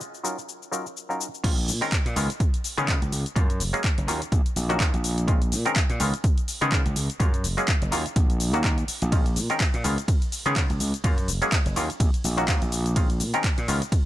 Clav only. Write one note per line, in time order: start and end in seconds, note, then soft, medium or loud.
0.24 0.37 F#3 medium
0.24 0.37 C#4 medium
0.24 0.37 D#4 medium
0.24 0.38 F4 medium
0.24 0.38 A#4 medium
0.72 0.85 F#3 medium
0.72 0.85 C#4 medium
0.72 0.85 D#4 medium
0.72 0.86 F4 medium
0.72 0.86 A#4 medium
1.09 1.27 F#3 medium
1.09 1.28 C#4 medium
1.09 1.28 D#4 medium
1.09 1.28 F4 medium
1.09 1.28 A#4 medium
1.44 1.57 D#3 medium
1.44 1.57 G#3 medium
1.44 1.57 C4 medium
1.44 1.58 C#4 medium
1.44 1.58 F4 loud
1.81 1.92 D#3 medium
1.81 1.92 G#3 medium
1.81 1.92 C4 medium
1.81 1.92 C#4 medium
1.81 1.92 A#4 medium
2.16 2.29 D#3 medium
2.16 2.30 G#3 medium
2.16 2.30 B3 medium
2.16 2.30 C#4 medium
2.16 2.30 F4 medium
2.78 2.86 D#3 loud
2.78 2.87 G#3 medium
2.78 2.87 B3 medium
2.78 2.87 C#4 medium
2.78 2.87 G#4 loud
2.88 3.01 D#3 medium
2.88 3.01 G#3 medium
2.88 3.01 B3 medium
2.88 3.02 C#4 medium
2.88 3.02 F4 loud
3.36 3.49 F#3 medium
3.36 3.49 G#3 medium
3.36 3.49 A#3 medium
3.36 3.49 C#4 medium
3.36 3.50 F4 loud
3.73 3.84 F#3 medium
3.73 3.84 G#3 medium
3.73 3.84 A#3 medium
3.73 3.84 C#4 medium
3.73 3.84 G#4 loud
4.08 4.21 D#3 medium
4.08 4.21 F#3 medium
4.08 4.21 A#3 medium
4.08 4.22 C#4 medium
4.08 4.22 F4 medium
4.69 4.78 D#3 loud
4.69 4.78 F#3 medium
4.69 4.79 A#3 medium
4.69 4.79 C#4 medium
4.69 4.79 F#4 loud
4.80 4.93 D#3 medium
4.80 4.93 F#3 medium
4.80 4.93 A#3 medium
4.80 4.94 C#4 medium
4.80 4.94 F4 loud
5.28 5.41 D#3 medium
5.28 5.41 G#3 medium
5.28 5.41 C4 medium
5.28 5.42 C#4 medium
5.28 5.42 F4 loud
5.65 5.76 D#3 medium
5.65 5.76 G#3 medium
5.65 5.76 C4 medium
5.65 5.76 C#4 medium
5.65 5.76 A#4 loud
6.00 6.13 D#3 medium
6.00 6.13 G#3 medium
6.00 6.14 B3 medium
6.00 6.14 C#4 medium
6.00 6.14 F4 medium
6.61 6.70 D#3 loud
6.61 6.71 G#3 loud
6.61 6.71 B3 medium
6.61 6.71 C#4 medium
6.61 6.71 G#4 loud
6.72 6.85 D#3 medium
6.72 6.85 G#3 medium
6.72 6.86 B3 medium
6.72 6.86 C#4 medium
6.72 6.86 F4 loud
7.20 7.33 F#3 medium
7.20 7.33 G#3 medium
7.20 7.33 A#3 medium
7.20 7.34 C#4 medium
7.20 7.34 F4 loud
7.57 7.68 F#3 medium
7.57 7.68 G#3 medium
7.57 7.68 A#3 medium
7.57 7.68 C#4 medium
7.57 7.68 G#4 loud
7.91 8.05 D#3 medium
7.91 8.05 F#3 medium
7.91 8.05 A#3 medium
7.91 8.05 C#4 medium
7.91 8.06 F4 medium
8.53 8.62 D#3 loud
8.53 8.63 F#3 medium
8.53 8.63 A#3 medium
8.53 8.63 C#4 medium
8.53 8.63 F#4 loud
8.64 8.78 F#3 medium
8.64 8.78 A#3 medium
8.64 8.78 C#4 medium
8.64 8.78 F4 loud
9.12 9.25 D#3 medium
9.12 9.26 G#3 medium
9.12 9.26 C4 medium
9.12 9.26 C#4 medium
9.12 9.26 F4 loud
9.50 9.60 D#3 medium
9.50 9.60 G#3 medium
9.50 9.60 C4 medium
9.50 9.60 C#4 medium
9.50 9.60 A#4 loud
9.84 9.97 D#3 medium
9.84 9.97 G#3 medium
9.84 9.98 B3 medium
9.84 9.98 C#4 medium
9.84 9.98 F4 loud
10.46 10.55 D#3 loud
10.46 10.55 G#3 medium
10.46 10.55 B3 medium
10.46 10.55 C#4 medium
10.46 10.55 G#4 loud
10.56 10.69 D#3 medium
10.56 10.69 G#3 medium
10.56 10.70 C#4 medium
10.56 10.70 F4 loud
11.04 11.17 F#3 medium
11.04 11.17 G#3 medium
11.04 11.17 A#3 medium
11.04 11.18 C#4 medium
11.04 11.18 F4 loud
11.42 11.52 F#3 medium
11.42 11.52 G#3 medium
11.42 11.52 A#3 medium
11.42 11.52 C#4 medium
11.42 11.52 G#4 loud
11.76 11.89 D#3 medium
11.76 11.90 F#3 medium
11.76 11.90 A#3 medium
11.76 11.90 C#4 medium
11.76 11.90 F4 medium
12.37 12.46 D#3 loud
12.37 12.47 F#3 medium
12.37 12.47 A#3 medium
12.37 12.47 C#4 medium
12.37 12.47 F#4 loud
12.48 12.62 A#3 medium
12.48 12.62 F4 loud
12.96 13.09 D#3 medium
12.96 13.10 G#3 medium
12.96 13.10 C4 medium
12.96 13.10 C#4 medium
12.96 13.10 F4 loud
13.34 13.44 D#3 medium
13.34 13.44 G#3 medium
13.34 13.44 C4 medium
13.34 13.44 C#4 medium
13.34 13.44 A#4 loud
13.68 13.81 D#3 medium
13.68 13.82 G#3 medium
13.68 13.82 B3 medium
13.68 13.82 C#4 medium
13.68 13.82 F4 medium